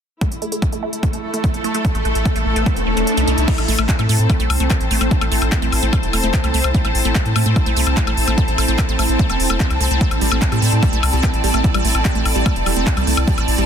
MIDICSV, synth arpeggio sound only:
0, 0, Header, 1, 2, 480
1, 0, Start_track
1, 0, Key_signature, 0, "minor"
1, 0, Tempo, 408163
1, 252, Time_signature, 4, 2, 24, 8
1, 16063, End_track
2, 0, Start_track
2, 0, Title_t, "Synth arpeggio sound"
2, 0, Program_c, 0, 84
2, 252, Note_on_c, 0, 57, 80
2, 280, Note_off_c, 0, 57, 0
2, 493, Note_on_c, 0, 57, 78
2, 520, Note_off_c, 0, 57, 0
2, 612, Note_on_c, 0, 57, 76
2, 640, Note_off_c, 0, 57, 0
2, 852, Note_on_c, 0, 57, 77
2, 880, Note_off_c, 0, 57, 0
2, 972, Note_on_c, 0, 57, 78
2, 1000, Note_off_c, 0, 57, 0
2, 1212, Note_on_c, 0, 57, 82
2, 1240, Note_off_c, 0, 57, 0
2, 1332, Note_on_c, 0, 57, 78
2, 1360, Note_off_c, 0, 57, 0
2, 1572, Note_on_c, 0, 57, 74
2, 1600, Note_off_c, 0, 57, 0
2, 1692, Note_on_c, 0, 57, 84
2, 1720, Note_off_c, 0, 57, 0
2, 1933, Note_on_c, 0, 57, 77
2, 1960, Note_off_c, 0, 57, 0
2, 2053, Note_on_c, 0, 57, 78
2, 2080, Note_off_c, 0, 57, 0
2, 2292, Note_on_c, 0, 57, 73
2, 2320, Note_off_c, 0, 57, 0
2, 2412, Note_on_c, 0, 57, 76
2, 2440, Note_off_c, 0, 57, 0
2, 2652, Note_on_c, 0, 57, 76
2, 2680, Note_off_c, 0, 57, 0
2, 2772, Note_on_c, 0, 57, 82
2, 2800, Note_off_c, 0, 57, 0
2, 3012, Note_on_c, 0, 57, 79
2, 3040, Note_off_c, 0, 57, 0
2, 3132, Note_on_c, 0, 57, 81
2, 3160, Note_off_c, 0, 57, 0
2, 3372, Note_on_c, 0, 57, 74
2, 3400, Note_off_c, 0, 57, 0
2, 3492, Note_on_c, 0, 57, 75
2, 3520, Note_off_c, 0, 57, 0
2, 3732, Note_on_c, 0, 57, 76
2, 3760, Note_off_c, 0, 57, 0
2, 3852, Note_on_c, 0, 57, 82
2, 3880, Note_off_c, 0, 57, 0
2, 4093, Note_on_c, 0, 57, 79
2, 4120, Note_off_c, 0, 57, 0
2, 4332, Note_on_c, 0, 57, 80
2, 4360, Note_off_c, 0, 57, 0
2, 4452, Note_on_c, 0, 57, 71
2, 4480, Note_off_c, 0, 57, 0
2, 4692, Note_on_c, 0, 57, 80
2, 4720, Note_off_c, 0, 57, 0
2, 4813, Note_on_c, 0, 57, 84
2, 4840, Note_off_c, 0, 57, 0
2, 5052, Note_on_c, 0, 57, 84
2, 5080, Note_off_c, 0, 57, 0
2, 5172, Note_on_c, 0, 57, 80
2, 5200, Note_off_c, 0, 57, 0
2, 5412, Note_on_c, 0, 57, 77
2, 5440, Note_off_c, 0, 57, 0
2, 5532, Note_on_c, 0, 57, 86
2, 5560, Note_off_c, 0, 57, 0
2, 5772, Note_on_c, 0, 57, 79
2, 5800, Note_off_c, 0, 57, 0
2, 5892, Note_on_c, 0, 57, 78
2, 5920, Note_off_c, 0, 57, 0
2, 6132, Note_on_c, 0, 57, 75
2, 6160, Note_off_c, 0, 57, 0
2, 6252, Note_on_c, 0, 57, 81
2, 6280, Note_off_c, 0, 57, 0
2, 6492, Note_on_c, 0, 57, 81
2, 6520, Note_off_c, 0, 57, 0
2, 6612, Note_on_c, 0, 57, 80
2, 6640, Note_off_c, 0, 57, 0
2, 6852, Note_on_c, 0, 57, 77
2, 6880, Note_off_c, 0, 57, 0
2, 6972, Note_on_c, 0, 57, 87
2, 7000, Note_off_c, 0, 57, 0
2, 7212, Note_on_c, 0, 57, 78
2, 7240, Note_off_c, 0, 57, 0
2, 7332, Note_on_c, 0, 57, 76
2, 7360, Note_off_c, 0, 57, 0
2, 7572, Note_on_c, 0, 57, 73
2, 7600, Note_off_c, 0, 57, 0
2, 7692, Note_on_c, 0, 57, 76
2, 7720, Note_off_c, 0, 57, 0
2, 7932, Note_on_c, 0, 57, 83
2, 7960, Note_off_c, 0, 57, 0
2, 8052, Note_on_c, 0, 57, 79
2, 8080, Note_off_c, 0, 57, 0
2, 8292, Note_on_c, 0, 57, 73
2, 8320, Note_off_c, 0, 57, 0
2, 8413, Note_on_c, 0, 57, 81
2, 8440, Note_off_c, 0, 57, 0
2, 8652, Note_on_c, 0, 57, 79
2, 8680, Note_off_c, 0, 57, 0
2, 8772, Note_on_c, 0, 57, 79
2, 8800, Note_off_c, 0, 57, 0
2, 9012, Note_on_c, 0, 57, 77
2, 9040, Note_off_c, 0, 57, 0
2, 9132, Note_on_c, 0, 57, 77
2, 9160, Note_off_c, 0, 57, 0
2, 9372, Note_on_c, 0, 57, 84
2, 9400, Note_off_c, 0, 57, 0
2, 9492, Note_on_c, 0, 57, 75
2, 9520, Note_off_c, 0, 57, 0
2, 9733, Note_on_c, 0, 57, 81
2, 9760, Note_off_c, 0, 57, 0
2, 9852, Note_on_c, 0, 57, 83
2, 9880, Note_off_c, 0, 57, 0
2, 10092, Note_on_c, 0, 57, 80
2, 10120, Note_off_c, 0, 57, 0
2, 10212, Note_on_c, 0, 57, 75
2, 10240, Note_off_c, 0, 57, 0
2, 10452, Note_on_c, 0, 57, 79
2, 10480, Note_off_c, 0, 57, 0
2, 10572, Note_on_c, 0, 57, 82
2, 10600, Note_off_c, 0, 57, 0
2, 10812, Note_on_c, 0, 57, 81
2, 10840, Note_off_c, 0, 57, 0
2, 10932, Note_on_c, 0, 57, 80
2, 10960, Note_off_c, 0, 57, 0
2, 11172, Note_on_c, 0, 57, 76
2, 11218, Note_off_c, 0, 57, 0
2, 11292, Note_on_c, 0, 60, 83
2, 11338, Note_off_c, 0, 60, 0
2, 11532, Note_on_c, 0, 57, 83
2, 11601, Note_off_c, 0, 57, 0
2, 11652, Note_on_c, 0, 57, 78
2, 11680, Note_off_c, 0, 57, 0
2, 11772, Note_on_c, 0, 57, 84
2, 11800, Note_off_c, 0, 57, 0
2, 12012, Note_on_c, 0, 55, 104
2, 12040, Note_off_c, 0, 55, 0
2, 12132, Note_on_c, 0, 57, 72
2, 12160, Note_off_c, 0, 57, 0
2, 12372, Note_on_c, 0, 55, 106
2, 12400, Note_off_c, 0, 55, 0
2, 12492, Note_on_c, 0, 57, 84
2, 12520, Note_off_c, 0, 57, 0
2, 12732, Note_on_c, 0, 55, 106
2, 12760, Note_off_c, 0, 55, 0
2, 12852, Note_on_c, 0, 57, 76
2, 12880, Note_off_c, 0, 57, 0
2, 13092, Note_on_c, 0, 55, 102
2, 13119, Note_off_c, 0, 55, 0
2, 13212, Note_on_c, 0, 57, 88
2, 13240, Note_off_c, 0, 57, 0
2, 13452, Note_on_c, 0, 55, 108
2, 13480, Note_off_c, 0, 55, 0
2, 13572, Note_on_c, 0, 57, 79
2, 13600, Note_off_c, 0, 57, 0
2, 13812, Note_on_c, 0, 55, 96
2, 13840, Note_off_c, 0, 55, 0
2, 13932, Note_on_c, 0, 57, 78
2, 13960, Note_off_c, 0, 57, 0
2, 14172, Note_on_c, 0, 55, 99
2, 14200, Note_off_c, 0, 55, 0
2, 14292, Note_on_c, 0, 57, 81
2, 14319, Note_off_c, 0, 57, 0
2, 14532, Note_on_c, 0, 55, 106
2, 14560, Note_off_c, 0, 55, 0
2, 14652, Note_on_c, 0, 57, 83
2, 14680, Note_off_c, 0, 57, 0
2, 14892, Note_on_c, 0, 55, 103
2, 14920, Note_off_c, 0, 55, 0
2, 15013, Note_on_c, 0, 57, 78
2, 15040, Note_off_c, 0, 57, 0
2, 15252, Note_on_c, 0, 55, 100
2, 15280, Note_off_c, 0, 55, 0
2, 15373, Note_on_c, 0, 57, 81
2, 15400, Note_off_c, 0, 57, 0
2, 15612, Note_on_c, 0, 55, 108
2, 15640, Note_off_c, 0, 55, 0
2, 15732, Note_on_c, 0, 57, 80
2, 15760, Note_off_c, 0, 57, 0
2, 15972, Note_on_c, 0, 55, 98
2, 16000, Note_off_c, 0, 55, 0
2, 16063, End_track
0, 0, End_of_file